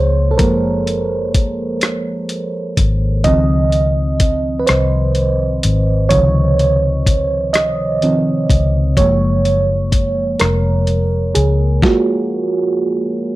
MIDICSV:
0, 0, Header, 1, 4, 480
1, 0, Start_track
1, 0, Tempo, 952381
1, 200, Time_signature, 6, 3, 24, 8
1, 6732, End_track
2, 0, Start_track
2, 0, Title_t, "FM electric piano"
2, 0, Program_c, 0, 5
2, 0, Control_c, 0, 64, 127
2, 0, Note_on_c, 0, 53, 52
2, 0, Note_on_c, 0, 56, 45
2, 0, Note_on_c, 0, 58, 53
2, 0, Note_on_c, 0, 72, 79
2, 0, Note_on_c, 0, 73, 89
2, 156, Note_on_c, 0, 69, 60
2, 166, Note_off_c, 0, 72, 0
2, 179, Note_off_c, 0, 53, 0
2, 180, Note_off_c, 0, 56, 0
2, 181, Note_off_c, 0, 58, 0
2, 190, Note_on_c, 0, 70, 80
2, 196, Note_off_c, 0, 69, 0
2, 199, Note_on_c, 0, 53, 47
2, 201, Note_on_c, 0, 56, 46
2, 205, Note_on_c, 0, 58, 52
2, 715, Note_off_c, 0, 70, 0
2, 899, Note_off_c, 0, 53, 0
2, 900, Note_off_c, 0, 56, 0
2, 902, Note_off_c, 0, 58, 0
2, 1634, Note_on_c, 0, 75, 93
2, 1639, Note_on_c, 0, 51, 45
2, 1641, Note_on_c, 0, 53, 42
2, 1645, Control_c, 0, 64, 0
2, 1645, Note_on_c, 0, 60, 55
2, 1647, Note_off_c, 0, 73, 0
2, 1747, Control_c, 0, 64, 127
2, 1959, Note_off_c, 0, 51, 0
2, 1960, Note_off_c, 0, 53, 0
2, 1962, Note_off_c, 0, 60, 0
2, 2316, Note_on_c, 0, 71, 63
2, 2342, Note_off_c, 0, 75, 0
2, 2352, Note_on_c, 0, 72, 79
2, 2355, Note_off_c, 0, 71, 0
2, 3070, Note_on_c, 0, 73, 94
2, 3075, Note_on_c, 0, 51, 46
2, 3076, Note_on_c, 0, 53, 42
2, 3081, Note_on_c, 0, 48, 55
2, 3097, Note_off_c, 0, 72, 0
2, 3796, Note_on_c, 0, 75, 86
2, 3816, Note_off_c, 0, 73, 0
2, 4041, Note_off_c, 0, 51, 0
2, 4041, Note_off_c, 0, 53, 0
2, 4047, Note_on_c, 0, 51, 44
2, 4047, Note_on_c, 0, 53, 39
2, 4050, Note_on_c, 0, 60, 44
2, 4263, Note_off_c, 0, 51, 0
2, 4263, Note_off_c, 0, 53, 0
2, 4264, Note_off_c, 0, 60, 0
2, 4318, Note_off_c, 0, 75, 0
2, 4500, Note_off_c, 0, 48, 0
2, 4521, Note_on_c, 0, 73, 93
2, 4524, Note_on_c, 0, 53, 50
2, 4526, Control_c, 0, 64, 0
2, 4526, Note_on_c, 0, 56, 48
2, 4531, Note_on_c, 0, 58, 54
2, 4629, Control_c, 0, 64, 127
2, 4841, Note_off_c, 0, 53, 0
2, 4842, Note_off_c, 0, 56, 0
2, 4845, Note_off_c, 0, 58, 0
2, 5220, Note_off_c, 0, 73, 0
2, 5240, Note_on_c, 0, 70, 80
2, 5700, Note_off_c, 0, 70, 0
2, 5719, Note_on_c, 0, 68, 68
2, 5942, Note_off_c, 0, 68, 0
2, 5962, Note_on_c, 0, 65, 49
2, 5962, Note_on_c, 0, 66, 73
2, 5965, Note_on_c, 0, 56, 45
2, 5968, Note_on_c, 0, 58, 56
2, 6661, Note_off_c, 0, 65, 0
2, 6662, Note_off_c, 0, 56, 0
2, 6664, Note_off_c, 0, 58, 0
2, 6732, Note_off_c, 0, 66, 0
2, 6732, End_track
3, 0, Start_track
3, 0, Title_t, "Fingered electric bass"
3, 0, Program_c, 1, 33
3, 0, Note_on_c, 1, 37, 78
3, 203, Note_off_c, 1, 37, 0
3, 203, Note_on_c, 1, 30, 91
3, 1381, Note_off_c, 1, 30, 0
3, 1404, Note_on_c, 1, 32, 87
3, 1622, Note_off_c, 1, 32, 0
3, 1640, Note_on_c, 1, 37, 86
3, 2340, Note_off_c, 1, 37, 0
3, 2367, Note_on_c, 1, 36, 77
3, 2823, Note_off_c, 1, 36, 0
3, 2846, Note_on_c, 1, 32, 77
3, 3063, Note_off_c, 1, 32, 0
3, 3083, Note_on_c, 1, 37, 93
3, 4261, Note_off_c, 1, 37, 0
3, 4286, Note_on_c, 1, 37, 78
3, 4503, Note_off_c, 1, 37, 0
3, 4525, Note_on_c, 1, 30, 92
3, 5222, Note_off_c, 1, 30, 0
3, 5248, Note_on_c, 1, 29, 79
3, 5704, Note_off_c, 1, 29, 0
3, 5728, Note_on_c, 1, 37, 78
3, 5944, Note_off_c, 1, 37, 0
3, 6732, End_track
4, 0, Start_track
4, 0, Title_t, "Drums"
4, 196, Note_on_c, 9, 42, 65
4, 198, Note_on_c, 9, 36, 96
4, 247, Note_off_c, 9, 42, 0
4, 248, Note_off_c, 9, 36, 0
4, 440, Note_on_c, 9, 42, 47
4, 490, Note_off_c, 9, 42, 0
4, 678, Note_on_c, 9, 36, 75
4, 678, Note_on_c, 9, 42, 68
4, 728, Note_off_c, 9, 42, 0
4, 729, Note_off_c, 9, 36, 0
4, 914, Note_on_c, 9, 42, 58
4, 922, Note_on_c, 9, 37, 93
4, 964, Note_off_c, 9, 42, 0
4, 973, Note_off_c, 9, 37, 0
4, 1155, Note_on_c, 9, 42, 46
4, 1205, Note_off_c, 9, 42, 0
4, 1397, Note_on_c, 9, 36, 69
4, 1398, Note_on_c, 9, 42, 68
4, 1448, Note_off_c, 9, 36, 0
4, 1448, Note_off_c, 9, 42, 0
4, 1634, Note_on_c, 9, 42, 60
4, 1636, Note_on_c, 9, 36, 86
4, 1684, Note_off_c, 9, 42, 0
4, 1686, Note_off_c, 9, 36, 0
4, 1877, Note_on_c, 9, 42, 46
4, 1927, Note_off_c, 9, 42, 0
4, 2116, Note_on_c, 9, 42, 70
4, 2117, Note_on_c, 9, 36, 72
4, 2166, Note_off_c, 9, 42, 0
4, 2168, Note_off_c, 9, 36, 0
4, 2355, Note_on_c, 9, 42, 59
4, 2363, Note_on_c, 9, 37, 96
4, 2405, Note_off_c, 9, 42, 0
4, 2414, Note_off_c, 9, 37, 0
4, 2594, Note_on_c, 9, 42, 45
4, 2645, Note_off_c, 9, 42, 0
4, 2839, Note_on_c, 9, 42, 68
4, 2889, Note_off_c, 9, 42, 0
4, 3077, Note_on_c, 9, 42, 66
4, 3078, Note_on_c, 9, 36, 86
4, 3127, Note_off_c, 9, 42, 0
4, 3128, Note_off_c, 9, 36, 0
4, 3323, Note_on_c, 9, 42, 46
4, 3374, Note_off_c, 9, 42, 0
4, 3561, Note_on_c, 9, 36, 70
4, 3563, Note_on_c, 9, 42, 69
4, 3611, Note_off_c, 9, 36, 0
4, 3613, Note_off_c, 9, 42, 0
4, 3799, Note_on_c, 9, 42, 62
4, 3808, Note_on_c, 9, 37, 97
4, 3850, Note_off_c, 9, 42, 0
4, 3858, Note_off_c, 9, 37, 0
4, 4043, Note_on_c, 9, 42, 41
4, 4094, Note_off_c, 9, 42, 0
4, 4282, Note_on_c, 9, 36, 69
4, 4285, Note_on_c, 9, 42, 64
4, 4332, Note_off_c, 9, 36, 0
4, 4336, Note_off_c, 9, 42, 0
4, 4520, Note_on_c, 9, 36, 97
4, 4522, Note_on_c, 9, 42, 69
4, 4570, Note_off_c, 9, 36, 0
4, 4573, Note_off_c, 9, 42, 0
4, 4764, Note_on_c, 9, 42, 45
4, 4814, Note_off_c, 9, 42, 0
4, 5001, Note_on_c, 9, 36, 80
4, 5002, Note_on_c, 9, 42, 69
4, 5051, Note_off_c, 9, 36, 0
4, 5053, Note_off_c, 9, 42, 0
4, 5239, Note_on_c, 9, 42, 60
4, 5247, Note_on_c, 9, 37, 97
4, 5289, Note_off_c, 9, 42, 0
4, 5298, Note_off_c, 9, 37, 0
4, 5479, Note_on_c, 9, 42, 45
4, 5529, Note_off_c, 9, 42, 0
4, 5722, Note_on_c, 9, 42, 66
4, 5772, Note_off_c, 9, 42, 0
4, 5959, Note_on_c, 9, 36, 89
4, 5964, Note_on_c, 9, 38, 73
4, 6010, Note_off_c, 9, 36, 0
4, 6014, Note_off_c, 9, 38, 0
4, 6732, End_track
0, 0, End_of_file